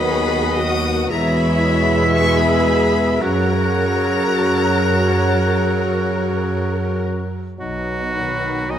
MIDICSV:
0, 0, Header, 1, 13, 480
1, 0, Start_track
1, 0, Key_signature, 5, "major"
1, 0, Tempo, 1022147
1, 1001, Tempo, 1094891
1, 1476, Time_signature, 4, 2, 24, 8
1, 3919, End_track
2, 0, Start_track
2, 0, Title_t, "Flute"
2, 0, Program_c, 0, 73
2, 0, Note_on_c, 0, 95, 58
2, 369, Note_off_c, 0, 95, 0
2, 516, Note_on_c, 0, 95, 87
2, 1476, Note_on_c, 0, 90, 71
2, 1483, Note_off_c, 0, 95, 0
2, 3247, Note_off_c, 0, 90, 0
2, 3393, Note_on_c, 0, 75, 61
2, 3631, Note_on_c, 0, 83, 66
2, 3638, Note_off_c, 0, 75, 0
2, 3881, Note_on_c, 0, 80, 68
2, 3887, Note_off_c, 0, 83, 0
2, 3919, Note_off_c, 0, 80, 0
2, 3919, End_track
3, 0, Start_track
3, 0, Title_t, "Violin section"
3, 0, Program_c, 1, 48
3, 0, Note_on_c, 1, 83, 104
3, 270, Note_on_c, 1, 87, 107
3, 274, Note_off_c, 1, 83, 0
3, 512, Note_off_c, 1, 87, 0
3, 513, Note_on_c, 1, 82, 105
3, 632, Note_off_c, 1, 82, 0
3, 636, Note_on_c, 1, 83, 86
3, 997, Note_on_c, 1, 85, 116
3, 1002, Note_off_c, 1, 83, 0
3, 1114, Note_off_c, 1, 85, 0
3, 1114, Note_on_c, 1, 83, 101
3, 1471, Note_on_c, 1, 82, 109
3, 1474, Note_off_c, 1, 83, 0
3, 3153, Note_off_c, 1, 82, 0
3, 3391, Note_on_c, 1, 59, 70
3, 3863, Note_off_c, 1, 59, 0
3, 3880, Note_on_c, 1, 66, 76
3, 3919, Note_off_c, 1, 66, 0
3, 3919, End_track
4, 0, Start_track
4, 0, Title_t, "Oboe"
4, 0, Program_c, 2, 68
4, 0, Note_on_c, 2, 75, 59
4, 368, Note_off_c, 2, 75, 0
4, 524, Note_on_c, 2, 76, 83
4, 1475, Note_on_c, 2, 78, 77
4, 1482, Note_off_c, 2, 76, 0
4, 3246, Note_off_c, 2, 78, 0
4, 3398, Note_on_c, 2, 66, 84
4, 3882, Note_on_c, 2, 75, 83
4, 3888, Note_off_c, 2, 66, 0
4, 3919, Note_off_c, 2, 75, 0
4, 3919, End_track
5, 0, Start_track
5, 0, Title_t, "Trumpet section"
5, 0, Program_c, 3, 61
5, 0, Note_on_c, 3, 75, 77
5, 501, Note_off_c, 3, 75, 0
5, 523, Note_on_c, 3, 76, 85
5, 1478, Note_on_c, 3, 73, 70
5, 1479, Note_off_c, 3, 76, 0
5, 3248, Note_off_c, 3, 73, 0
5, 3919, End_track
6, 0, Start_track
6, 0, Title_t, "Violin section"
6, 0, Program_c, 4, 48
6, 0, Note_on_c, 4, 71, 69
6, 0, Note_on_c, 4, 78, 68
6, 502, Note_off_c, 4, 78, 0
6, 520, Note_on_c, 4, 73, 79
6, 521, Note_off_c, 4, 71, 0
6, 522, Note_on_c, 4, 76, 78
6, 994, Note_off_c, 4, 73, 0
6, 1005, Note_off_c, 4, 76, 0
6, 1011, Note_on_c, 4, 76, 70
6, 1012, Note_on_c, 4, 71, 70
6, 1471, Note_off_c, 4, 76, 0
6, 1480, Note_on_c, 4, 70, 65
6, 1480, Note_on_c, 4, 73, 65
6, 1481, Note_off_c, 4, 71, 0
6, 3304, Note_off_c, 4, 70, 0
6, 3304, Note_off_c, 4, 73, 0
6, 3639, Note_on_c, 4, 63, 48
6, 3641, Note_off_c, 4, 63, 0
6, 3641, Note_on_c, 4, 63, 48
6, 3919, Note_off_c, 4, 63, 0
6, 3919, End_track
7, 0, Start_track
7, 0, Title_t, "Cello section"
7, 0, Program_c, 5, 48
7, 38, Note_on_c, 5, 68, 82
7, 274, Note_on_c, 5, 66, 70
7, 277, Note_off_c, 5, 68, 0
7, 514, Note_off_c, 5, 66, 0
7, 515, Note_on_c, 5, 64, 76
7, 999, Note_on_c, 5, 68, 79
7, 1001, Note_off_c, 5, 64, 0
7, 1475, Note_off_c, 5, 68, 0
7, 1475, Note_on_c, 5, 70, 74
7, 3137, Note_off_c, 5, 70, 0
7, 3391, Note_on_c, 5, 47, 62
7, 3824, Note_off_c, 5, 47, 0
7, 3881, Note_on_c, 5, 47, 62
7, 3919, Note_off_c, 5, 47, 0
7, 3919, End_track
8, 0, Start_track
8, 0, Title_t, "Clarinet"
8, 0, Program_c, 6, 71
8, 0, Note_on_c, 6, 66, 50
8, 368, Note_off_c, 6, 66, 0
8, 513, Note_on_c, 6, 68, 78
8, 1457, Note_off_c, 6, 68, 0
8, 1474, Note_on_c, 6, 66, 68
8, 3228, Note_off_c, 6, 66, 0
8, 3400, Note_on_c, 6, 63, 56
8, 3919, Note_off_c, 6, 63, 0
8, 3919, End_track
9, 0, Start_track
9, 0, Title_t, "French horn section"
9, 0, Program_c, 7, 60
9, 0, Note_on_c, 7, 59, 73
9, 0, Note_on_c, 7, 66, 74
9, 501, Note_off_c, 7, 59, 0
9, 502, Note_off_c, 7, 66, 0
9, 517, Note_on_c, 7, 64, 89
9, 519, Note_on_c, 7, 59, 84
9, 1459, Note_off_c, 7, 59, 0
9, 1473, Note_on_c, 7, 61, 69
9, 1474, Note_on_c, 7, 66, 67
9, 1476, Note_off_c, 7, 64, 0
9, 3228, Note_off_c, 7, 61, 0
9, 3246, Note_off_c, 7, 66, 0
9, 3391, Note_on_c, 7, 54, 62
9, 3863, Note_off_c, 7, 54, 0
9, 3881, Note_on_c, 7, 63, 72
9, 3919, Note_off_c, 7, 63, 0
9, 3919, End_track
10, 0, Start_track
10, 0, Title_t, "Viola section"
10, 0, Program_c, 8, 48
10, 41, Note_on_c, 8, 59, 76
10, 41, Note_on_c, 8, 66, 73
10, 279, Note_off_c, 8, 59, 0
10, 281, Note_on_c, 8, 58, 74
10, 507, Note_off_c, 8, 66, 0
10, 512, Note_on_c, 8, 68, 84
10, 513, Note_on_c, 8, 56, 86
10, 517, Note_off_c, 8, 58, 0
10, 990, Note_off_c, 8, 68, 0
10, 1001, Note_on_c, 8, 68, 72
10, 1466, Note_off_c, 8, 68, 0
10, 1471, Note_on_c, 8, 54, 74
10, 1471, Note_on_c, 8, 70, 67
10, 1474, Note_off_c, 8, 56, 0
10, 3299, Note_off_c, 8, 54, 0
10, 3299, Note_off_c, 8, 70, 0
10, 3634, Note_on_c, 8, 51, 53
10, 3634, Note_on_c, 8, 54, 52
10, 3919, Note_off_c, 8, 51, 0
10, 3919, Note_off_c, 8, 54, 0
10, 3919, End_track
11, 0, Start_track
11, 0, Title_t, "Trombone section"
11, 0, Program_c, 10, 61
11, 0, Note_on_c, 10, 51, 78
11, 0, Note_on_c, 10, 54, 76
11, 496, Note_off_c, 10, 54, 0
11, 497, Note_off_c, 10, 51, 0
11, 508, Note_on_c, 10, 47, 76
11, 513, Note_on_c, 10, 56, 77
11, 1457, Note_off_c, 10, 56, 0
11, 1472, Note_off_c, 10, 47, 0
11, 1476, Note_on_c, 10, 42, 67
11, 1477, Note_on_c, 10, 54, 72
11, 3229, Note_off_c, 10, 42, 0
11, 3230, Note_off_c, 10, 54, 0
11, 3919, End_track
12, 0, Start_track
12, 0, Title_t, "Bassoon"
12, 0, Program_c, 11, 70
12, 0, Note_on_c, 11, 51, 56
12, 367, Note_off_c, 11, 51, 0
12, 516, Note_on_c, 11, 47, 88
12, 1472, Note_on_c, 11, 49, 77
12, 1479, Note_off_c, 11, 47, 0
12, 3245, Note_off_c, 11, 49, 0
12, 3389, Note_on_c, 11, 54, 59
12, 3919, Note_off_c, 11, 54, 0
12, 3919, End_track
13, 0, Start_track
13, 0, Title_t, "Double bass section"
13, 0, Program_c, 12, 48
13, 0, Note_on_c, 12, 39, 74
13, 500, Note_off_c, 12, 39, 0
13, 519, Note_on_c, 12, 40, 83
13, 1477, Note_off_c, 12, 40, 0
13, 1477, Note_on_c, 12, 42, 71
13, 3302, Note_off_c, 12, 42, 0
13, 3397, Note_on_c, 12, 35, 60
13, 3827, Note_off_c, 12, 35, 0
13, 3884, Note_on_c, 12, 35, 62
13, 3919, Note_off_c, 12, 35, 0
13, 3919, End_track
0, 0, End_of_file